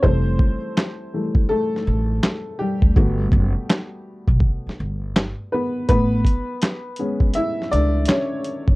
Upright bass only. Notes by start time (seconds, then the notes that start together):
0.04 F1
1.87 A1
2.83 D2
2.97 G1
3.33 F#1
4.28 B1
4.67 muted upright bass stroke
4.80 G1
5.90 A1
7.73 C#2
8.68 F#1